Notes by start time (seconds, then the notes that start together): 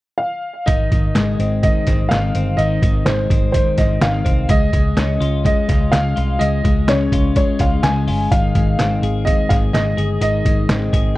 0.18 F5
0.66 G#1 D#3 D#5, kick, closed hi-hat
0.92 G#1 D#3, kick, closed hi-hat
1.15 G#1 G#3, snare, closed hi-hat
1.39 G#1 C4, closed hi-hat
1.63 D#3 D#5, kick, closed hi-hat
1.87 G#1 C4, kick, snare, closed hi-hat
2.09 G#1 D#3 F5, snare, closed hi-hat
2.35 G1 C4, closed hi-hat
2.57 G#1 D#3 D#5, closed hi-hat
2.82 G#1 D#3, kick, closed hi-hat
3.06 G#1 G#3 C5, snare, closed hi-hat
3.30 G#1 C4, kick, closed hi-hat
3.52 D#3 C5, kick, closed hi-hat
3.77 G#1 C4 D#5, kick, snare, closed hi-hat
4.01 G#1 D#3 F5, snare, closed hi-hat
4.25 C2 C4, kick, closed hi-hat
4.49 C#2 G#3 D#5, kick, closed hi-hat
4.73 C#2 G#3, kick, closed hi-hat
4.97 C#2 C#4, snare, closed hi-hat
5.21 C#2 F4, closed hi-hat
5.45 G#3 D#5, kick, closed hi-hat
5.69 C#2 F4, kick, snare, closed hi-hat
5.92 C#2 G#3 F5, snare, closed hi-hat
6.16 C2 F4, closed hi-hat
6.39 C#2 G#3 D#5, closed hi-hat
6.64 C#2 G#3, kick, closed hi-hat
6.87 C#2 C#4 C#5, snare, closed hi-hat
7.12 C#2 F4, kick, closed hi-hat
7.36 G#3 C#5, kick, closed hi-hat
7.59 C#2 F4 F5, kick, snare, closed hi-hat
7.83 C#2 G#3 G#5, snare, closed hi-hat
8.07 G1 F4, open hi-hat
8.31 G#1 D#3 F5, kick, closed hi-hat
8.55 G#1 G#3, kick, closed hi-hat
8.79 G#1 C4, snare, closed hi-hat
9.02 G#1 G#4, closed hi-hat
9.25 G#3 D#5, kick, closed hi-hat
9.49 G#1 G#4 F5, kick, snare, closed hi-hat
9.73 G#1 G#3 D#5, snare, closed hi-hat
9.97 G1 G#4, closed hi-hat
10.21 G#1 D#3 D#5, closed hi-hat
10.45 G#1 G#3, kick, closed hi-hat
10.69 G#1 C4, snare, closed hi-hat
10.93 G#1 G#4, kick, closed hi-hat